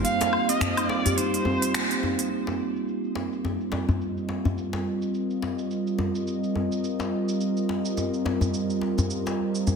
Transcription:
Already playing: analog synth pad G3 C4 F4 C5 F5
0.04 steel tongue drum A#3, kamancheh F5, open hi-hat, cabasa
0.21 open hi-hat, djembe slap, djembe tone, cabasa
0.33 low woodblock
0.49 steel tongue drum C4, kamancheh D#5, open hi-hat, cabasa
0.61 finger snap, open hi-hat, djembe bass, cabasa
0.77 steel tongue drum D#4, open hi-hat, cabasa, low woodblock
0.89 kamancheh D5, djembe slap
1.06 steel tongue drum G4, open hi-hat, djembe bass, cabasa
1.17 steel tongue drum D#4, kamancheh C5, open hi-hat, cabasa
1.34 open hi-hat, cabasa
1.45 steel tongue drum C4, djembe tone
1.62 open hi-hat, cabasa
1.74 steel tongue drum A#3, finger snap, open hi-hat, cabasa
1.90 steel tongue drum C4, open hi-hat, cabasa
2.03 steel tongue drum D#4, djembe tone
2.19 open hi-hat, cabasa
2.32 cabasa
2.47 djembe slap, djembe tone, cabasa
2.76 cabasa
2.88 cabasa
3.04 analog synth pad A#4, cabasa
3.15 djembe slap
3.32 cabasa
3.45 djembe tone, cabasa
3.61 cabasa
3.72 djembe slap, djembe tone
3.89 djembe bass, cabasa
3.99 analog synth pad D#5, cabasa
4.17 cabasa
4.29 djembe slap
4.45 djembe bass, cabasa
4.58 cabasa
4.73 djembe slap, djembe tone, cabasa
5.02 cabasa
5.14 cabasa
5.30 cabasa
5.42 djembe slap
5.59 cabasa
5.71 cabasa
5.87 cabasa
5.99 djembe tone
6.15 cabasa
6.27 cabasa
6.44 cabasa
6.55 djembe tone
6.72 cabasa
6.84 cabasa
6.99 djembe slap, djembe tone, cabasa
7.29 cabasa
7.41 cabasa
7.57 cabasa
7.69 djembe slap
7.85 cabasa
7.97 djembe tone, cabasa
8.14 cabasa
8.25 djembe slap, djembe tone
8.41 djembe bass, cabasa
8.54 cabasa
8.70 cabasa
8.81 djembe slap
8.98 djembe bass, cabasa
9.10 cabasa
9.26 djembe slap, djembe tone, cabasa
9.55 cabasa
9.67 djembe bass, cabasa

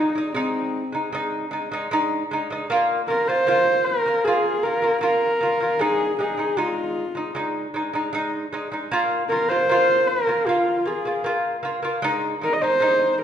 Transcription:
Already playing: lute G#3, horsehead fiddle D#4
0.00 lute D#4
0.15 lute G#3 D#4
0.34 lute G#3 D#4, horsehead fiddle C4
0.92 lute G#3 D#4
1.13 lute G#3 D#4
1.51 lute G#3 D#4
1.72 lute G#3 D#4
1.91 lute G#3 D#4
2.31 lute G#3 D#4
2.50 lute G#3 D#4
2.70 lute A#3 F4
3.08 lute A#3 F4, horsehead fiddle A#4
3.28 lute A#3 F4, horsehead fiddle C5
3.47 lute A#3 F4
3.85 horsehead fiddle A#4
4.06 lute A#3 F4
4.24 lute A#3 F4, horsehead fiddle G#4
4.63 lute A#3 F4, horsehead fiddle A#4
4.82 lute A#3 F4
5.01 lute A#3 F4, horsehead fiddle A#4
5.41 lute A#3 F4
5.60 lute A#3 F4
5.79 lute G#3 D#4, horsehead fiddle G#4
6.19 lute G#3 D#4, horsehead fiddle G#4
6.37 lute G#3 D#4
6.57 lute G#3 D#4, horsehead fiddle F4
7.15 lute G#3 D#4
7.35 lute G#3 D#4
7.74 lute G#3 D#4
7.93 lute G#3 D#4
8.13 lute G#3 D#4
8.53 lute G#3 D#4
8.72 lute G#3 D#4
8.91 lute A#3 F4
9.30 lute A#3 F4, horsehead fiddle A#4
9.49 lute A#3 F4, horsehead fiddle C5
9.69 lute A#3 F4
10.08 horsehead fiddle A#4
10.27 lute A#3 F4
10.46 lute A#3 F4, horsehead fiddle F4
10.86 lute A#3 F4, horsehead fiddle G#4
11.05 lute A#3 F4
11.24 lute A#3 F4
11.63 lute A#3 F4
11.83 lute A#3 F4
12.02 lute G#3 D#4
12.41 lute G#3 D#4, horsehead fiddle A#4
12.53 horsehead fiddle D#5
12.62 lute G#3 D#4, horsehead fiddle C5
12.80 lute G#3 D#4

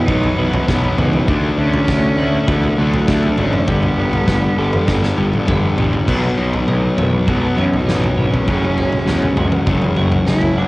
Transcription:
Already playing: clean electric guitar B2 B3 F#4
0.05 picked electric bass B1, distorted electric guitar B2 F#3 B3, cello D#4, kick, floor tom
0.23 floor tom
0.38 picked electric bass B1, distorted electric guitar B2 F#3 B3, clean electric guitar E3
0.52 cello C#4, floor tom
0.67 picked electric bass B1, distorted electric guitar B2 F#3 B3, cello B3, clean electric guitar B3, kick, snare, mid tom
0.83 floor tom
0.97 picked electric bass C#2, distorted electric guitar B2 F#3 B3, clean electric guitar E3, cello D#4, floor tom, mid tom
1.13 mid tom
1.28 picked electric bass D2, distorted electric guitar D3 A3 D4, clean electric guitar D3, kick, floor tom
1.58 picked electric bass D2, distorted electric guitar D3 A3 D4, cello C#4
1.73 floor tom
1.88 picked electric bass D2, distorted electric guitar D3 A3 D4, clean electric guitar A3, kick, snare, floor tom
2.17 picked electric bass D2, distorted electric guitar D3 A3 D4, clean electric guitar E4
2.48 picked electric bass D2, distorted electric guitar D3 A3 D4, cello B3, kick, floor tom
2.63 floor tom
2.78 picked electric bass D2, distorted electric guitar D3 A3 D4, clean electric guitar F#3, cello A3
2.93 floor tom
3.08 picked electric bass D2, distorted electric guitar D3 A3 D4, clean electric guitar A3, kick, snare
3.23 floor tom
3.38 picked electric bass G#1, distorted electric guitar D3 A3 D4, clean electric guitar F#3, cello C#4, floor tom
3.53 mid tom
3.68 picked electric bass G1, distorted electric guitar G2 D3 G3, clean electric guitar G3, cello B3, kick, floor tom
3.83 floor tom
3.98 picked electric bass G1, distorted electric guitar G2 D3 G3
4.13 floor tom
4.27 picked electric bass G1, distorted electric guitar G2 D3 G3, clean electric guitar B3, kick, snare, floor tom
4.58 picked electric bass G1, distorted electric guitar G2 D3 G3, clean electric guitar A4
4.73 mid tom
4.88 picked electric bass G1, distorted electric guitar G2 D3 G3, clean electric guitar D4, kick, snare
5.03 snare
5.17 picked electric bass G1, distorted electric guitar G2 D3 G3, clean electric guitar G3
5.33 high tom
5.47 picked electric bass G1, distorted electric guitar G2 D3 G3, clean electric guitar B3, kick, mid tom
5.78 picked electric bass A1, distorted electric guitar G2 D3 G3, clean electric guitar G3, floor tom
5.93 floor tom
6.08 picked electric bass B1, distorted electric guitar B2 F#3 B3, clean electric guitar B3, kick, floor tom, crash
6.37 picked electric bass B1, clean electric guitar D#4
6.53 floor tom
6.68 picked electric bass B1, clean electric guitar D#4, floor tom
6.97 picked electric bass B1, cello D#3, clean electric guitar C#5, floor tom, mid tom
7.15 cello F#3
7.27 picked electric bass B1, distorted electric guitar B2 F#3 B3, clean electric guitar F#4, kick, floor tom
7.31 cello G#3
7.46 cello B3
7.57 picked electric bass F#2, cello C#4, clean electric guitar C#5, mid tom
7.73 cello D#4, floor tom
7.87 picked electric bass A1, clean electric guitar D#4, snare
8.04 floor tom
8.17 picked electric bass G#1, cello C#4, clean electric guitar C#5
8.34 floor tom
8.47 picked electric bass F#1, distorted electric guitar F#2 C#3 F#3, clean electric guitar F#3, kick, floor tom
8.77 clean electric guitar G#3, floor tom
8.92 floor tom
9.06 picked electric bass E2, clean electric guitar G#3, snare, floor tom
9.22 floor tom
9.37 picked electric bass C#2, clean electric guitar F#4, floor tom, mid tom
9.52 mid tom
9.66 picked electric bass F#1, distorted electric guitar F#2 C#3 F#3, clean electric guitar C#4, kick, floor tom
9.82 mid tom
9.96 picked electric bass F#1, clean electric guitar F#4, mid tom
10.12 floor tom
10.26 picked electric bass F#1, clean electric guitar G#3, cello E4, snare
10.41 floor tom
10.56 picked electric bass F#1, cello D4, clean electric guitar F#4

